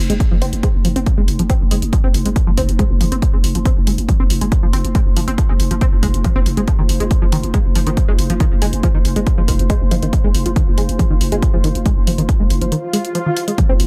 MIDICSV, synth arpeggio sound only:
0, 0, Header, 1, 2, 480
1, 0, Start_track
1, 0, Tempo, 431655
1, 1664, Time_signature, 4, 2, 24, 8
1, 15422, End_track
2, 0, Start_track
2, 0, Title_t, "Synth arpeggio sound"
2, 0, Program_c, 0, 84
2, 109, Note_on_c, 0, 56, 75
2, 150, Note_off_c, 0, 56, 0
2, 349, Note_on_c, 0, 53, 75
2, 390, Note_off_c, 0, 53, 0
2, 464, Note_on_c, 0, 60, 97
2, 509, Note_off_c, 0, 60, 0
2, 704, Note_on_c, 0, 56, 80
2, 748, Note_off_c, 0, 56, 0
2, 943, Note_on_c, 0, 53, 76
2, 988, Note_off_c, 0, 53, 0
2, 1068, Note_on_c, 0, 60, 103
2, 1110, Note_off_c, 0, 60, 0
2, 1309, Note_on_c, 0, 56, 77
2, 1350, Note_off_c, 0, 56, 0
2, 1549, Note_on_c, 0, 53, 73
2, 1590, Note_off_c, 0, 53, 0
2, 1663, Note_on_c, 0, 60, 98
2, 1708, Note_off_c, 0, 60, 0
2, 1904, Note_on_c, 0, 56, 77
2, 1949, Note_off_c, 0, 56, 0
2, 2144, Note_on_c, 0, 53, 83
2, 2189, Note_off_c, 0, 53, 0
2, 2268, Note_on_c, 0, 60, 95
2, 2310, Note_off_c, 0, 60, 0
2, 2508, Note_on_c, 0, 56, 77
2, 2550, Note_off_c, 0, 56, 0
2, 2748, Note_on_c, 0, 53, 82
2, 2790, Note_off_c, 0, 53, 0
2, 2864, Note_on_c, 0, 60, 99
2, 2908, Note_off_c, 0, 60, 0
2, 3104, Note_on_c, 0, 56, 80
2, 3148, Note_off_c, 0, 56, 0
2, 3344, Note_on_c, 0, 53, 78
2, 3388, Note_off_c, 0, 53, 0
2, 3468, Note_on_c, 0, 60, 99
2, 3510, Note_off_c, 0, 60, 0
2, 3709, Note_on_c, 0, 56, 76
2, 3750, Note_off_c, 0, 56, 0
2, 3949, Note_on_c, 0, 53, 81
2, 3990, Note_off_c, 0, 53, 0
2, 4064, Note_on_c, 0, 60, 107
2, 4109, Note_off_c, 0, 60, 0
2, 4305, Note_on_c, 0, 56, 76
2, 4349, Note_off_c, 0, 56, 0
2, 4544, Note_on_c, 0, 53, 84
2, 4589, Note_off_c, 0, 53, 0
2, 4669, Note_on_c, 0, 60, 102
2, 4710, Note_off_c, 0, 60, 0
2, 4909, Note_on_c, 0, 56, 77
2, 4950, Note_off_c, 0, 56, 0
2, 5149, Note_on_c, 0, 53, 75
2, 5190, Note_off_c, 0, 53, 0
2, 5264, Note_on_c, 0, 60, 101
2, 5309, Note_off_c, 0, 60, 0
2, 5505, Note_on_c, 0, 56, 82
2, 5549, Note_off_c, 0, 56, 0
2, 5745, Note_on_c, 0, 53, 73
2, 5789, Note_off_c, 0, 53, 0
2, 5868, Note_on_c, 0, 60, 106
2, 5910, Note_off_c, 0, 60, 0
2, 6108, Note_on_c, 0, 56, 80
2, 6150, Note_off_c, 0, 56, 0
2, 6349, Note_on_c, 0, 53, 77
2, 6390, Note_off_c, 0, 53, 0
2, 6463, Note_on_c, 0, 60, 105
2, 6508, Note_off_c, 0, 60, 0
2, 6703, Note_on_c, 0, 56, 76
2, 6748, Note_off_c, 0, 56, 0
2, 6943, Note_on_c, 0, 53, 80
2, 6988, Note_off_c, 0, 53, 0
2, 7069, Note_on_c, 0, 60, 105
2, 7110, Note_off_c, 0, 60, 0
2, 7309, Note_on_c, 0, 56, 76
2, 7350, Note_off_c, 0, 56, 0
2, 7424, Note_on_c, 0, 53, 77
2, 7469, Note_off_c, 0, 53, 0
2, 7548, Note_on_c, 0, 51, 77
2, 7590, Note_off_c, 0, 51, 0
2, 7787, Note_on_c, 0, 56, 76
2, 7829, Note_off_c, 0, 56, 0
2, 8028, Note_on_c, 0, 53, 77
2, 8070, Note_off_c, 0, 53, 0
2, 8143, Note_on_c, 0, 51, 76
2, 8188, Note_off_c, 0, 51, 0
2, 8383, Note_on_c, 0, 56, 83
2, 8428, Note_off_c, 0, 56, 0
2, 8624, Note_on_c, 0, 53, 74
2, 8669, Note_off_c, 0, 53, 0
2, 8749, Note_on_c, 0, 51, 77
2, 8790, Note_off_c, 0, 51, 0
2, 8988, Note_on_c, 0, 56, 75
2, 9030, Note_off_c, 0, 56, 0
2, 9229, Note_on_c, 0, 53, 73
2, 9270, Note_off_c, 0, 53, 0
2, 9344, Note_on_c, 0, 51, 79
2, 9388, Note_off_c, 0, 51, 0
2, 9584, Note_on_c, 0, 56, 78
2, 9628, Note_off_c, 0, 56, 0
2, 9824, Note_on_c, 0, 53, 85
2, 9868, Note_off_c, 0, 53, 0
2, 9949, Note_on_c, 0, 51, 73
2, 9990, Note_off_c, 0, 51, 0
2, 10188, Note_on_c, 0, 56, 78
2, 10230, Note_off_c, 0, 56, 0
2, 10429, Note_on_c, 0, 53, 80
2, 10470, Note_off_c, 0, 53, 0
2, 10544, Note_on_c, 0, 51, 75
2, 10589, Note_off_c, 0, 51, 0
2, 10785, Note_on_c, 0, 56, 78
2, 10829, Note_off_c, 0, 56, 0
2, 11025, Note_on_c, 0, 53, 79
2, 11069, Note_off_c, 0, 53, 0
2, 11150, Note_on_c, 0, 51, 77
2, 11190, Note_off_c, 0, 51, 0
2, 11390, Note_on_c, 0, 56, 81
2, 11431, Note_off_c, 0, 56, 0
2, 11630, Note_on_c, 0, 53, 78
2, 11670, Note_off_c, 0, 53, 0
2, 11745, Note_on_c, 0, 51, 82
2, 11789, Note_off_c, 0, 51, 0
2, 11985, Note_on_c, 0, 56, 76
2, 12029, Note_off_c, 0, 56, 0
2, 12224, Note_on_c, 0, 53, 87
2, 12269, Note_off_c, 0, 53, 0
2, 12349, Note_on_c, 0, 51, 78
2, 12390, Note_off_c, 0, 51, 0
2, 12590, Note_on_c, 0, 56, 80
2, 12630, Note_off_c, 0, 56, 0
2, 12829, Note_on_c, 0, 53, 75
2, 12870, Note_off_c, 0, 53, 0
2, 12944, Note_on_c, 0, 51, 81
2, 12989, Note_off_c, 0, 51, 0
2, 13184, Note_on_c, 0, 56, 85
2, 13229, Note_off_c, 0, 56, 0
2, 13425, Note_on_c, 0, 53, 78
2, 13469, Note_off_c, 0, 53, 0
2, 13548, Note_on_c, 0, 51, 79
2, 13589, Note_off_c, 0, 51, 0
2, 13788, Note_on_c, 0, 56, 73
2, 13830, Note_off_c, 0, 56, 0
2, 14028, Note_on_c, 0, 53, 78
2, 14070, Note_off_c, 0, 53, 0
2, 14143, Note_on_c, 0, 51, 81
2, 14188, Note_off_c, 0, 51, 0
2, 14382, Note_on_c, 0, 56, 77
2, 14428, Note_off_c, 0, 56, 0
2, 14623, Note_on_c, 0, 53, 83
2, 14668, Note_off_c, 0, 53, 0
2, 14748, Note_on_c, 0, 51, 79
2, 14789, Note_off_c, 0, 51, 0
2, 14987, Note_on_c, 0, 56, 72
2, 15029, Note_off_c, 0, 56, 0
2, 15102, Note_on_c, 0, 53, 85
2, 15148, Note_off_c, 0, 53, 0
2, 15227, Note_on_c, 0, 60, 101
2, 15269, Note_off_c, 0, 60, 0
2, 15422, End_track
0, 0, End_of_file